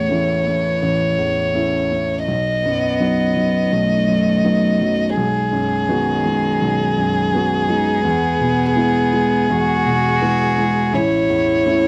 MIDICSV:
0, 0, Header, 1, 4, 480
1, 0, Start_track
1, 0, Key_signature, 4, "major"
1, 0, Tempo, 722022
1, 1516, Time_signature, 4, 2, 24, 8
1, 7896, End_track
2, 0, Start_track
2, 0, Title_t, "Violin"
2, 0, Program_c, 0, 40
2, 0, Note_on_c, 0, 73, 42
2, 1489, Note_off_c, 0, 73, 0
2, 1509, Note_on_c, 0, 75, 43
2, 3408, Note_off_c, 0, 75, 0
2, 3433, Note_on_c, 0, 68, 60
2, 7279, Note_on_c, 0, 73, 57
2, 7289, Note_off_c, 0, 68, 0
2, 7896, Note_off_c, 0, 73, 0
2, 7896, End_track
3, 0, Start_track
3, 0, Title_t, "Cello"
3, 0, Program_c, 1, 42
3, 0, Note_on_c, 1, 57, 60
3, 71, Note_on_c, 1, 52, 69
3, 81, Note_off_c, 1, 57, 0
3, 1276, Note_off_c, 1, 52, 0
3, 1755, Note_on_c, 1, 59, 74
3, 2478, Note_on_c, 1, 57, 85
3, 2488, Note_off_c, 1, 59, 0
3, 3439, Note_off_c, 1, 57, 0
3, 3444, Note_on_c, 1, 56, 63
3, 3914, Note_on_c, 1, 51, 76
3, 3924, Note_off_c, 1, 56, 0
3, 5111, Note_on_c, 1, 63, 67
3, 5121, Note_off_c, 1, 51, 0
3, 5346, Note_off_c, 1, 63, 0
3, 5350, Note_on_c, 1, 59, 86
3, 6323, Note_on_c, 1, 66, 116
3, 6333, Note_off_c, 1, 59, 0
3, 7268, Note_on_c, 1, 64, 85
3, 7277, Note_off_c, 1, 66, 0
3, 7896, Note_off_c, 1, 64, 0
3, 7896, End_track
4, 0, Start_track
4, 0, Title_t, "Felt piano"
4, 0, Program_c, 2, 0
4, 0, Control_c, 2, 64, 127
4, 0, Note_on_c, 2, 33, 46
4, 0, Note_on_c, 2, 40, 36
4, 61, Note_on_c, 2, 57, 30
4, 66, Note_on_c, 2, 61, 35
4, 68, Note_on_c, 2, 64, 36
4, 210, Note_off_c, 2, 40, 0
4, 280, Note_off_c, 2, 57, 0
4, 282, Note_off_c, 2, 61, 0
4, 284, Note_off_c, 2, 64, 0
4, 310, Note_on_c, 2, 57, 32
4, 521, Note_off_c, 2, 33, 0
4, 548, Note_on_c, 2, 33, 40
4, 692, Note_off_c, 2, 57, 0
4, 789, Note_on_c, 2, 40, 38
4, 1028, Note_on_c, 2, 57, 35
4, 1032, Note_on_c, 2, 64, 36
4, 1033, Note_on_c, 2, 61, 36
4, 1176, Note_off_c, 2, 40, 0
4, 1248, Note_off_c, 2, 57, 0
4, 1250, Note_off_c, 2, 64, 0
4, 1251, Note_off_c, 2, 61, 0
4, 1273, Note_on_c, 2, 57, 32
4, 1491, Note_off_c, 2, 33, 0
4, 1515, Note_on_c, 2, 35, 45
4, 1517, Note_off_c, 2, 57, 0
4, 1528, Control_c, 2, 64, 0
4, 1641, Control_c, 2, 64, 127
4, 1764, Note_on_c, 2, 42, 38
4, 1995, Note_on_c, 2, 54, 36
4, 1997, Note_on_c, 2, 59, 35
4, 2000, Note_on_c, 2, 63, 37
4, 2146, Note_off_c, 2, 42, 0
4, 2213, Note_off_c, 2, 54, 0
4, 2214, Note_off_c, 2, 59, 0
4, 2215, Note_off_c, 2, 63, 0
4, 2234, Note_on_c, 2, 54, 36
4, 2451, Note_off_c, 2, 35, 0
4, 2475, Note_on_c, 2, 35, 45
4, 2620, Note_off_c, 2, 54, 0
4, 2712, Note_on_c, 2, 42, 37
4, 2954, Note_on_c, 2, 54, 39
4, 2956, Note_on_c, 2, 59, 38
4, 2960, Note_on_c, 2, 63, 42
4, 3101, Note_off_c, 2, 42, 0
4, 3173, Note_off_c, 2, 54, 0
4, 3174, Note_off_c, 2, 59, 0
4, 3176, Note_off_c, 2, 63, 0
4, 3199, Note_on_c, 2, 54, 39
4, 3410, Note_off_c, 2, 35, 0
4, 3437, Note_on_c, 2, 35, 57
4, 3438, Note_off_c, 2, 54, 0
4, 3452, Control_c, 2, 64, 0
4, 3564, Control_c, 2, 64, 127
4, 3672, Note_on_c, 2, 42, 45
4, 3916, Note_on_c, 2, 56, 38
4, 3917, Note_on_c, 2, 59, 42
4, 3918, Note_on_c, 2, 66, 46
4, 4057, Note_off_c, 2, 42, 0
4, 4133, Note_off_c, 2, 56, 0
4, 4133, Note_off_c, 2, 59, 0
4, 4134, Note_off_c, 2, 66, 0
4, 4159, Note_on_c, 2, 56, 43
4, 4370, Note_off_c, 2, 35, 0
4, 4398, Note_on_c, 2, 35, 52
4, 4543, Note_off_c, 2, 56, 0
4, 4639, Note_on_c, 2, 42, 47
4, 4878, Note_on_c, 2, 56, 44
4, 4880, Note_on_c, 2, 59, 44
4, 4882, Note_on_c, 2, 66, 46
4, 5017, Note_off_c, 2, 42, 0
4, 5089, Note_off_c, 2, 56, 0
4, 5090, Note_off_c, 2, 59, 0
4, 5091, Note_off_c, 2, 66, 0
4, 5113, Note_on_c, 2, 56, 43
4, 5322, Note_off_c, 2, 35, 0
4, 5349, Note_on_c, 2, 40, 60
4, 5350, Note_off_c, 2, 56, 0
4, 5360, Control_c, 2, 64, 0
4, 5454, Control_c, 2, 64, 127
4, 5591, Note_on_c, 2, 47, 45
4, 5825, Note_on_c, 2, 56, 45
4, 5828, Note_on_c, 2, 64, 51
4, 5829, Note_on_c, 2, 59, 42
4, 5974, Note_off_c, 2, 47, 0
4, 6045, Note_off_c, 2, 56, 0
4, 6047, Note_off_c, 2, 59, 0
4, 6047, Note_off_c, 2, 64, 0
4, 6073, Note_on_c, 2, 56, 45
4, 6289, Note_off_c, 2, 40, 0
4, 6317, Note_on_c, 2, 40, 59
4, 6462, Note_off_c, 2, 56, 0
4, 6557, Note_on_c, 2, 47, 46
4, 6792, Note_on_c, 2, 59, 43
4, 6793, Note_on_c, 2, 56, 46
4, 6794, Note_on_c, 2, 64, 47
4, 6939, Note_off_c, 2, 47, 0
4, 7009, Note_off_c, 2, 56, 0
4, 7009, Note_off_c, 2, 59, 0
4, 7010, Note_off_c, 2, 64, 0
4, 7035, Note_on_c, 2, 56, 47
4, 7248, Note_off_c, 2, 40, 0
4, 7266, Note_on_c, 2, 33, 60
4, 7274, Note_off_c, 2, 56, 0
4, 7287, Control_c, 2, 64, 0
4, 7393, Control_c, 2, 64, 127
4, 7510, Note_on_c, 2, 40, 44
4, 7751, Note_on_c, 2, 57, 41
4, 7753, Note_on_c, 2, 61, 50
4, 7754, Note_on_c, 2, 64, 48
4, 7889, Note_off_c, 2, 40, 0
4, 7896, Note_off_c, 2, 33, 0
4, 7896, Note_off_c, 2, 57, 0
4, 7896, Note_off_c, 2, 61, 0
4, 7896, Note_off_c, 2, 64, 0
4, 7896, End_track
0, 0, End_of_file